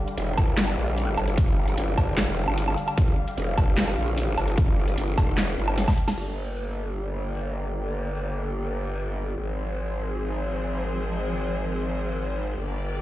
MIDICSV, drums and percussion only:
0, 0, Header, 1, 2, 480
1, 0, Start_track
1, 0, Tempo, 400000
1, 1650, Time_signature, 4, 2, 24, 8
1, 15620, End_track
2, 0, Start_track
2, 0, Title_t, "Drums"
2, 92, Note_on_c, 9, 42, 50
2, 210, Note_off_c, 9, 42, 0
2, 210, Note_on_c, 9, 42, 77
2, 330, Note_off_c, 9, 42, 0
2, 450, Note_on_c, 9, 36, 66
2, 450, Note_on_c, 9, 46, 95
2, 450, Note_on_c, 9, 77, 82
2, 570, Note_off_c, 9, 36, 0
2, 570, Note_off_c, 9, 46, 0
2, 570, Note_off_c, 9, 77, 0
2, 690, Note_on_c, 9, 38, 118
2, 690, Note_on_c, 9, 39, 88
2, 690, Note_on_c, 9, 42, 77
2, 810, Note_off_c, 9, 38, 0
2, 810, Note_off_c, 9, 39, 0
2, 810, Note_off_c, 9, 42, 0
2, 812, Note_on_c, 9, 77, 53
2, 932, Note_off_c, 9, 77, 0
2, 1170, Note_on_c, 9, 42, 78
2, 1290, Note_off_c, 9, 42, 0
2, 1410, Note_on_c, 9, 42, 51
2, 1410, Note_on_c, 9, 77, 81
2, 1530, Note_off_c, 9, 42, 0
2, 1530, Note_off_c, 9, 77, 0
2, 1531, Note_on_c, 9, 42, 51
2, 1650, Note_off_c, 9, 42, 0
2, 1650, Note_on_c, 9, 36, 118
2, 1650, Note_on_c, 9, 42, 81
2, 1770, Note_off_c, 9, 36, 0
2, 1770, Note_off_c, 9, 42, 0
2, 2012, Note_on_c, 9, 42, 55
2, 2130, Note_off_c, 9, 42, 0
2, 2130, Note_on_c, 9, 42, 80
2, 2250, Note_off_c, 9, 42, 0
2, 2370, Note_on_c, 9, 36, 59
2, 2371, Note_on_c, 9, 46, 100
2, 2371, Note_on_c, 9, 77, 82
2, 2490, Note_off_c, 9, 36, 0
2, 2491, Note_off_c, 9, 46, 0
2, 2491, Note_off_c, 9, 77, 0
2, 2611, Note_on_c, 9, 38, 116
2, 2611, Note_on_c, 9, 39, 88
2, 2611, Note_on_c, 9, 42, 81
2, 2731, Note_off_c, 9, 38, 0
2, 2731, Note_off_c, 9, 39, 0
2, 2731, Note_off_c, 9, 42, 0
2, 2973, Note_on_c, 9, 77, 86
2, 3091, Note_on_c, 9, 42, 80
2, 3093, Note_off_c, 9, 77, 0
2, 3211, Note_off_c, 9, 42, 0
2, 3213, Note_on_c, 9, 77, 80
2, 3331, Note_on_c, 9, 42, 52
2, 3333, Note_off_c, 9, 77, 0
2, 3451, Note_off_c, 9, 42, 0
2, 3452, Note_on_c, 9, 42, 54
2, 3452, Note_on_c, 9, 77, 82
2, 3570, Note_on_c, 9, 36, 114
2, 3571, Note_off_c, 9, 42, 0
2, 3571, Note_on_c, 9, 42, 84
2, 3572, Note_off_c, 9, 77, 0
2, 3690, Note_off_c, 9, 36, 0
2, 3691, Note_off_c, 9, 42, 0
2, 3932, Note_on_c, 9, 42, 54
2, 4050, Note_off_c, 9, 42, 0
2, 4050, Note_on_c, 9, 42, 83
2, 4170, Note_off_c, 9, 42, 0
2, 4291, Note_on_c, 9, 36, 61
2, 4291, Note_on_c, 9, 46, 98
2, 4291, Note_on_c, 9, 77, 76
2, 4411, Note_off_c, 9, 36, 0
2, 4411, Note_off_c, 9, 46, 0
2, 4411, Note_off_c, 9, 77, 0
2, 4530, Note_on_c, 9, 38, 114
2, 4530, Note_on_c, 9, 39, 89
2, 4530, Note_on_c, 9, 42, 83
2, 4650, Note_off_c, 9, 38, 0
2, 4650, Note_off_c, 9, 39, 0
2, 4650, Note_off_c, 9, 42, 0
2, 4652, Note_on_c, 9, 77, 48
2, 4772, Note_off_c, 9, 77, 0
2, 5010, Note_on_c, 9, 42, 87
2, 5130, Note_off_c, 9, 42, 0
2, 5251, Note_on_c, 9, 42, 54
2, 5251, Note_on_c, 9, 77, 79
2, 5371, Note_off_c, 9, 42, 0
2, 5371, Note_off_c, 9, 77, 0
2, 5373, Note_on_c, 9, 42, 58
2, 5491, Note_off_c, 9, 42, 0
2, 5491, Note_on_c, 9, 36, 120
2, 5491, Note_on_c, 9, 42, 83
2, 5611, Note_off_c, 9, 36, 0
2, 5611, Note_off_c, 9, 42, 0
2, 5853, Note_on_c, 9, 42, 58
2, 5971, Note_off_c, 9, 42, 0
2, 5971, Note_on_c, 9, 42, 84
2, 6091, Note_off_c, 9, 42, 0
2, 6211, Note_on_c, 9, 36, 62
2, 6211, Note_on_c, 9, 46, 95
2, 6211, Note_on_c, 9, 77, 80
2, 6331, Note_off_c, 9, 36, 0
2, 6331, Note_off_c, 9, 46, 0
2, 6331, Note_off_c, 9, 77, 0
2, 6452, Note_on_c, 9, 38, 119
2, 6452, Note_on_c, 9, 39, 90
2, 6452, Note_on_c, 9, 42, 84
2, 6572, Note_off_c, 9, 38, 0
2, 6572, Note_off_c, 9, 39, 0
2, 6572, Note_off_c, 9, 42, 0
2, 6813, Note_on_c, 9, 77, 79
2, 6931, Note_on_c, 9, 38, 64
2, 6931, Note_on_c, 9, 42, 85
2, 6933, Note_off_c, 9, 77, 0
2, 7051, Note_off_c, 9, 38, 0
2, 7051, Note_off_c, 9, 42, 0
2, 7053, Note_on_c, 9, 36, 60
2, 7053, Note_on_c, 9, 38, 61
2, 7053, Note_on_c, 9, 77, 74
2, 7171, Note_on_c, 9, 42, 55
2, 7173, Note_off_c, 9, 36, 0
2, 7173, Note_off_c, 9, 38, 0
2, 7173, Note_off_c, 9, 77, 0
2, 7291, Note_off_c, 9, 42, 0
2, 7293, Note_on_c, 9, 38, 89
2, 7293, Note_on_c, 9, 42, 55
2, 7293, Note_on_c, 9, 77, 80
2, 7411, Note_on_c, 9, 49, 75
2, 7413, Note_off_c, 9, 38, 0
2, 7413, Note_off_c, 9, 42, 0
2, 7413, Note_off_c, 9, 77, 0
2, 7531, Note_off_c, 9, 49, 0
2, 15620, End_track
0, 0, End_of_file